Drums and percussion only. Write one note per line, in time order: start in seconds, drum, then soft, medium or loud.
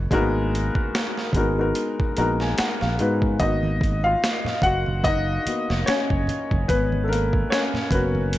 0.11 kick loud
0.11 closed hi-hat medium
0.55 closed hi-hat medium
0.75 kick medium
0.95 snare loud
0.95 closed hi-hat medium
1.18 snare soft
1.33 kick medium
1.33 closed hi-hat medium
1.75 closed hi-hat medium
2.00 kick medium
2.17 closed hi-hat medium
2.40 snare soft
2.58 snare loud
2.58 closed hi-hat medium
2.81 snare soft
2.99 closed hi-hat soft
3.22 kick medium
3.40 kick loud
3.40 closed hi-hat medium
3.63 muted conga soft
3.63 high conga medium
3.81 kick loud
3.81 closed hi-hat medium
4.22 snare loud
4.22 closed hi-hat medium
4.22 muted conga soft
4.45 snare soft
4.45 muted conga soft
4.45 low conga medium
4.62 kick medium
4.62 closed hi-hat medium
4.86 high conga medium
4.86 low conga medium
5.04 kick medium
5.04 closed hi-hat medium
5.04 muted conga soft
5.04 high conga medium
5.46 closed hi-hat medium
5.46 high conga soft
5.70 snare soft
5.87 snare loud
5.87 closed hi-hat medium
5.87 muted conga soft
6.10 kick medium
6.27 closed hi-hat medium
6.27 high conga medium
6.27 low conga medium
6.51 kick medium
6.69 kick loud
6.69 closed hi-hat medium
6.92 muted conga soft
6.92 high conga medium
7.13 closed hi-hat medium
7.33 kick medium
7.52 snare loud
7.52 closed hi-hat medium
7.74 snare soft
7.74 muted conga soft
7.74 low conga medium
7.91 kick medium
7.91 closed hi-hat medium
8.15 high conga medium
8.15 low conga medium
8.33 closed hi-hat medium
8.33 muted conga soft
8.33 high conga medium